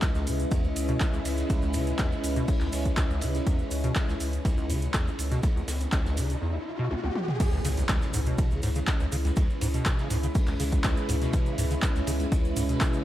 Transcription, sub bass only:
0.27 C#2
0.64 C#2
0.76 C#2
1.25 C#2
1.74 C#2
2.24 C#2
2.61 C#2
2.73 C#2
3.22 C#2
3.71 C#2
4.20 C#2
4.58 C#2
4.70 C#2
5.19 C#2
5.68 C#2
6.17 C#2
7.65 C#2
8.14 C#2
8.51 C#2
8.63 C#2
9.12 C#2
9.61 C#2
10.11 C#2
10.48 C#2
10.60 C#2
11.09 C#2
11.58 C#2
12.07 C#2
12.45 C#2
12.56 C#2

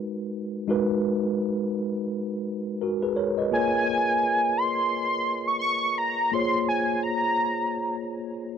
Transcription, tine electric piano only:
Already playing: G#3 D#4 F#4 A#4 B4
0.68 G#3 D#4 F#4 A#4 B4
2.82 F#4 A#4
3.02 G#4 B4
3.16 A#4 C#5
3.38 B4 D#5
3.51 A#3 F4 G#4 A#4 C#5
6.32 A#3 F4 G#4 C5 C#5

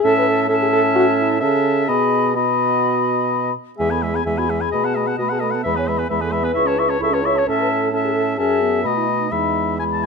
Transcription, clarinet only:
0.04 C#4
0.49 C#4
1.41 C#4
1.89 B3
2.35 B3
3.78 G#3
3.91 B3
4.03 G#3
4.14 B3
4.26 G#3
4.37 B3
4.49 G#3
4.61 B3
4.72 A3
4.84 B3
4.96 A3
5.07 B3
5.19 A3
5.31 B3
5.42 A3
5.54 B3
5.66 G#3
5.77 B3
5.88 G#3
5.98 B3
6.09 G#3
6.21 B3
6.32 G#3
6.42 B3
6.54 E4
6.65 C#4
6.77 E4
6.88 C#4
7.00 E4
7.11 C#4
7.23 E4
7.35 C#4
7.46 C#4
7.92 C#4
8.39 C#4
8.61 B3
8.84 A3
9.31 G#3
9.80 G#3

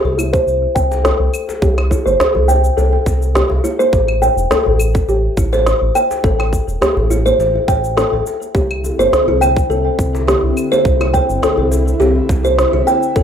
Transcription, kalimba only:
0.18 E4
0.33 C5
0.75 G5
1.04 A4
1.62 G4
1.91 E4
2.06 C5
2.48 G5
2.77 A4
3.35 G4
3.64 E4
3.79 C5
4.22 G5
4.51 A4
5.09 G4
5.37 E4
5.53 C5
5.95 G5
6.24 A4
6.82 G4
7.10 E4
7.26 C5
7.68 G5
7.97 A4
8.55 G4
8.99 C5
9.28 E4
9.41 G5
9.70 A4
10.28 G4
10.72 C5
11.01 E4
11.14 G5
11.43 A4
12.00 G4
12.45 C5
12.73 E4
12.87 G5
13.16 A4

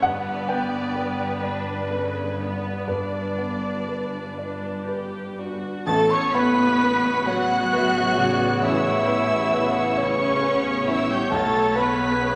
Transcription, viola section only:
0.03 B3 B4
1.42 D4
1.89 C#3
2.38 B3
2.88 D4 D5
4.38 D4
4.88 G4
5.39 F#4
5.88 A4
6.12 C#5
6.36 B4
7.28 F#4
8.64 E4
10.00 C#4
10.88 E4
11.11 G4
11.34 A4
11.77 B4

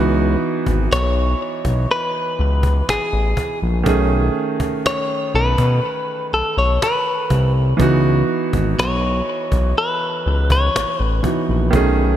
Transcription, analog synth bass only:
Already playing: C#2
0.67 G#1
0.92 B1
1.65 B1
2.39 C#2
2.88 A1
3.13 A1
3.62 A#1
3.86 B1
5.34 B1
5.58 B2
6.33 B1
6.57 B1
7.31 C2
7.80 C#2
8.54 G#1
8.79 B1
9.52 B1
10.26 C#2
10.75 A1
11.00 A1
11.49 A#1
11.73 B1

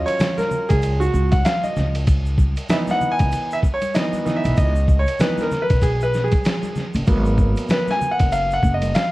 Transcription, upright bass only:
0.70 C#2
1.14 C#2
1.77 C#2
3.20 C#2
4.45 B1
4.58 C#2
5.70 B1
6.95 F#1
7.08 G#1
8.20 F#1
8.63 F#1

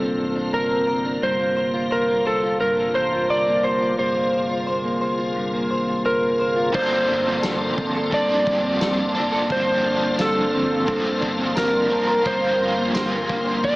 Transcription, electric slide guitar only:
Already playing: A4
0.54 A#4
1.23 C5
1.92 A#4
2.27 A4
2.61 A#4
2.95 C5
3.30 D5
3.64 C5
3.99 C5
6.06 A#4
6.75 C5
8.14 D5
9.52 C5
10.21 A4
11.58 A#4
12.27 C5
13.65 D5

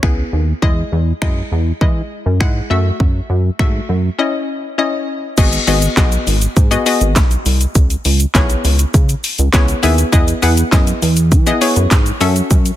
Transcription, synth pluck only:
0.03 B3 E4 G#4
0.62 G#3 E4 D#5
1.22 G#3 E4 D#5
1.81 G#3 E4 D#5
2.40 G#3 E4 F#5
2.70 A3 F#4 E5
3.59 A3 F#4 E5
4.19 C#4 E4 D#5
4.78 C#4 E4 D#5
5.38 B3 F#4 G#4 D#5
5.67 B3 F#4 G#4 D#5
5.97 B3 F#4 G#4 D#5
6.71 B3 F#4 G#4 D#5
6.86 B3 F#4 G#4 D#5
8.34 B3 E4 G#4 C#5
9.53 B3 E4 G#4 C#5
9.83 B3 E4 G#4 E5
10.12 B3 E4 G#4 D#5
10.42 B3 E4 G#4 F#5
10.72 B3 E4 G#4 D#5
11.46 B3 E4 G#4 D#5
11.61 B3 E4 G#4 C#5
12.21 C#4 F#4 A4 E5

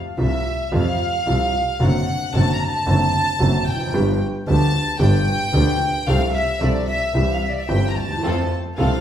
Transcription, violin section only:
0.20 E5
0.75 F5
1.83 F#5
2.36 A5
2.54 A#5
2.62 A5
3.68 G5
4.49 A5
5.02 G5
6.07 F5
6.34 E5
6.62 D5
6.88 E5
7.33 F5
7.42 E5
7.51 D5
7.60 E5
7.69 G5
7.90 A#5
7.96 A5
8.78 F5

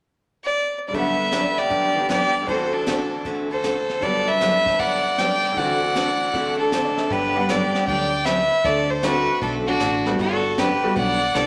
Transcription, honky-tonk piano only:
0.88 G2 D3
0.93 A3 B3
0.99 F#5
1.95 E3 B3 D4 G4
2.42 D2 D3
2.48 E3 C4
2.53 F#4
4.00 G2 D3 F#3 B3
4.06 A4
5.52 D2 D3
5.57 E3 C4
5.62 F#4
6.33 D3 A3 E4
6.60 A4
6.72 C5
6.85 D5
6.97 E5
7.36 G3 B3 D4 F#5
9.03 A3 C4 D4 F#4
10.06 G3 A3 B3 F#4
10.83 G3 A3 B3 F#4

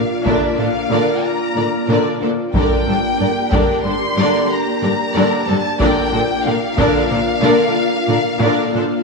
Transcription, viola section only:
0.25 D3 D4
0.59 D3 D4
0.91 D3 D4
1.56 D3 D4
1.89 D3 D4
2.20 D3 D4
2.54 D3 D4
2.87 D3 D4
3.20 D3 D4
3.52 D3 D4
3.84 D3 D4
4.17 D3 D4
4.82 D3 D4
5.15 D3 D4
5.48 D3 D4
5.80 D3 D4
6.12 D3 D4
6.45 D3 D4
6.78 D3 D4
7.10 D3 D4
7.42 D3 D4
8.08 D3 D4
8.41 D3 D4
8.74 D3 D4

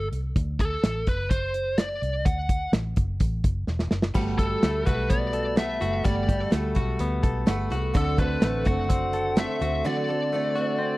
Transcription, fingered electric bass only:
0.12 C2
0.36 D2
0.83 A1
1.08 F#1
2.02 C2
2.25 D2
2.72 A1
2.97 F#1
3.20 A1
3.44 F#1
3.68 E1
3.91 F#1
4.15 G1
4.63 D2
4.87 B1
5.82 F#1
6.05 G1
6.53 D2
6.76 B1
7.00 D2
7.24 B1
7.47 G1
7.71 C2
7.95 D2
8.43 A1
8.66 F#1
9.61 D2

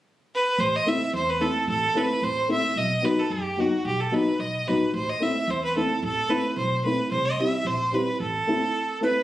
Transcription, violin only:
0.35 B4
0.59 C5
0.76 D#5
0.88 E5
1.15 C5
1.30 B4
1.41 A4
1.69 A4
1.97 B4
2.23 C5
2.51 E5
2.78 D#5
3.05 B4
3.19 A4
3.32 G4
3.60 F#4
3.86 G4
4.00 A4
4.14 B4
4.40 D#5
4.68 B4
4.95 C5
5.09 D#5
5.22 E5
5.50 C5
5.64 B4
5.77 A4
6.04 A4
6.30 B4
6.57 C5
6.84 B4
7.11 C5
7.25 D#5
7.40 E5
7.66 C5
7.94 B4
8.20 A4
9.05 B4

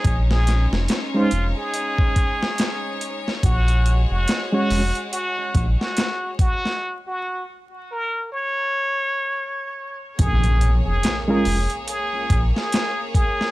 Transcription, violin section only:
Already playing: G#3 C#4 D#4
0.05 C#5
3.44 G#3 F#4
10.17 A#3 G#4 C#5

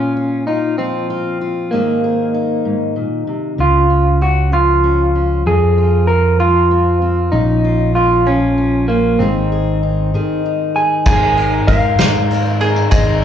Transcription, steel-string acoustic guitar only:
Already playing: A#2 F4
0.17 F4
0.48 F4
0.78 F3 F4
1.10 F4
1.41 F4
1.72 G#2 D#3 C4 D#4 G#4
2.04 G#4
2.34 D#4
2.65 G#2
2.96 A#2
3.27 C3
3.58 C#3 C#4
3.90 C#4
4.21 C#4
4.52 F3 C#4
4.84 C#4
5.15 C#4
5.46 F2 C4
5.78 F4
6.10 C4
6.40 F3 C4
6.71 C4
7.02 C4
7.32 A#2 C#4
7.64 F4
7.96 C#4
8.26 F3 F4
8.58 C#4
8.89 F4
9.19 G#2 D#3 C4 D#4 G#4
9.52 G#4
9.83 D#4
10.14 D#3 G#4
10.46 D#4
10.76 G#4

